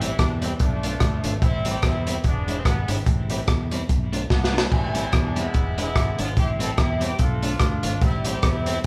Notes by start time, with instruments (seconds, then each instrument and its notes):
Already playing: fingered electric bass A1, horn section E3 G3
0.01 clean electric guitar G3 C4 E4, horn section E4, closed hi-hat
0.19 fingered electric bass E2, horn section D4, muted clean electric guitar stroke, kick, cross-stick, closed hi-hat
0.42 clean electric guitar G3 C4 E4, horn section C4, closed hi-hat
0.59 fingered electric bass B1, horn section F3 A3 D4, kick, closed hi-hat
0.83 clean electric guitar A3 D4 F4, closed hi-hat
1.00 fingered electric bass D2, kick, cross-stick, closed hi-hat
1.24 fingered electric bass G#1, clean electric guitar A3 D4 F4, closed hi-hat
1.42 fingered electric bass A1, horn section G3 C4 E4, kick, closed hi-hat
1.65 clean electric guitar G3 C4 E4, horn section G4, closed hi-hat
1.82 fingered electric bass E2, horn section E4, muted clean electric guitar stroke, kick, cross-stick, closed hi-hat
2.07 clean electric guitar G3 C4 E4, horn section E4, closed hi-hat
2.24 fingered electric bass E1, horn section G#3 B3 D4, kick, closed hi-hat
2.48 clean electric guitar G#3 D4 E4, closed hi-hat
2.57 horn section C4
2.65 fingered electric bass G#1, horn section B3, kick, cross-stick, closed hi-hat
2.88 fingered electric bass G#1, horn section E3 G3 C4, clean electric guitar G#3 D4 E4, closed hi-hat
3.06 fingered electric bass A1, kick, closed hi-hat
3.30 clean electric guitar G3 C4 E4, closed hi-hat
3.47 fingered electric bass E2, muted clean electric guitar stroke, kick, cross-stick, closed hi-hat
3.71 clean electric guitar G3 C4 E4, closed hi-hat
3.89 fingered electric bass B1, muted clean electric guitar stroke, kick, closed hi-hat
4.13 clean electric guitar A3 D4 F4, closed hi-hat
4.30 fingered electric bass C2, horn section B3, kick, snare
4.44 snare
4.53 horn section E3 G3 C4, clean electric guitar A3 D4 F4
4.58 snare
4.72 fingered electric bass A1, kick, crash
4.94 clean electric guitar G3 C4 E4, horn section C4, closed hi-hat
5.12 fingered electric bass E2, horn section D4, muted clean electric guitar stroke, kick, cross-stick, closed hi-hat
5.36 clean electric guitar G3 C4 E4, horn section G#3 B3, closed hi-hat
5.40 horn section E4
5.54 fingered electric bass E1, kick, closed hi-hat
5.78 clean electric guitar G#3 D4 E4, horn section G#3 B3 E4, closed hi-hat
5.96 fingered electric bass G#1, kick, cross-stick, closed hi-hat
6.19 fingered electric bass G#1, clean electric guitar G#3 D4 E4, horn section F4, closed hi-hat
6.37 fingered electric bass A1, horn section C4 E4 G4, kick, closed hi-hat
6.59 clean electric guitar G3 C4 E4, horn section A4, closed hi-hat
6.77 fingered electric bass E2, horn section E4, muted clean electric guitar stroke, kick, cross-stick, closed hi-hat
7.00 clean electric guitar G3 C4 E4, horn section G4, closed hi-hat
7.19 fingered electric bass B1, horn section D4 F4 A4, kick, closed hi-hat
7.43 clean electric guitar A3 D4 F4, closed hi-hat
7.60 fingered electric bass D2, kick, cross-stick, closed hi-hat
7.83 fingered electric bass G#1, clean electric guitar A3 D4 F4, closed hi-hat
8.01 fingered electric bass A1, horn section G3 C4 E4, kick, closed hi-hat
8.24 clean electric guitar G3 C4 E4, horn section G4, closed hi-hat
8.42 fingered electric bass E2, muted clean electric guitar stroke, kick, cross-stick, closed hi-hat
8.47 horn section E4
8.66 clean electric guitar G3 C4 E4, horn section E4, closed hi-hat